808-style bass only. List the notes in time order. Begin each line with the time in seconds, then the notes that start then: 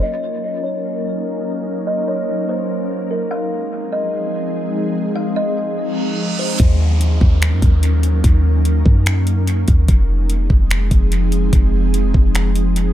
6.60 D#2
7.21 D#2
7.52 F#2
7.62 D#2
8.24 D#2
8.86 F#2
9.68 D#2
9.88 F1
10.50 F1
10.91 F1
11.53 F1
12.14 F1